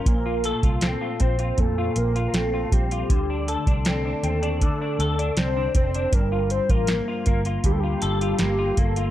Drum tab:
HH |x-xxx-xxx-xxx-xx|x-xxx-xxx-xxx-xx|x-xxx-xxx-xxx-xx|
SD |----o-------o---|----o-------o---|----o-------o---|
BD |o--o--o-o-----o-|o--o----o-----o-|o--o--o-o-----o-|